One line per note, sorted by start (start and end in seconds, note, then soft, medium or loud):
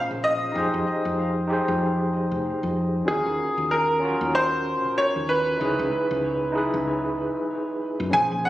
0.00 0.51 C#4 medium
0.00 0.56 F4 medium
0.00 0.56 G#4 medium
0.00 0.57 C5 medium
0.11 0.49 A#1 medium
0.24 1.46 D#5 loud
0.52 0.68 F2 medium
0.52 1.45 D#4 medium
0.52 1.46 G4 medium
0.52 1.47 G#4 medium
0.58 1.48 C5 loud
0.74 0.83 F2 medium
1.05 1.60 F2 medium
1.47 3.03 D#4 medium
1.47 3.04 G4 medium
1.47 3.05 G#4 medium
1.53 3.06 C5 medium
1.68 2.33 F2 medium
2.31 2.52 F1 medium
2.63 3.02 F2 medium
3.05 3.21 D#2 medium
3.05 3.98 C#4 medium
3.05 3.99 F4 medium
3.05 4.00 F#4 medium
3.05 3.73 G#4 medium
3.11 4.01 A#4 medium
3.26 3.36 D#2 medium
3.58 4.12 D#2 medium
3.71 4.30 A#4 medium
4.00 5.56 C#4 medium
4.00 5.57 F4 medium
4.00 5.58 F#4 medium
4.05 5.59 A#4 medium
4.21 4.84 D#2 medium
4.35 4.94 C5 medium
4.84 5.05 A#1 medium
4.98 5.30 C#5 loud
5.16 5.54 D#2 medium
5.29 6.51 B4 medium
5.57 5.73 C#2 medium
5.57 6.50 D#4 medium
5.57 6.52 E4 medium
5.61 6.52 G#4 medium
5.61 6.53 B4 loud
5.79 5.88 C#2 medium
6.11 6.65 C#2 medium
6.52 8.08 D#4 medium
6.52 8.09 E4 medium
6.52 8.10 G#4 medium
6.58 8.11 B4 medium
6.74 7.28 C#2 medium
8.00 8.09 F#2 medium
8.11 8.26 A#1 medium
8.11 8.49 F3 medium
8.11 8.49 C#4 medium
8.11 8.49 G#4 medium
8.11 8.46 G#5 loud
8.16 8.49 C5 medium
8.31 8.41 A#1 medium
8.45 8.49 F#5 medium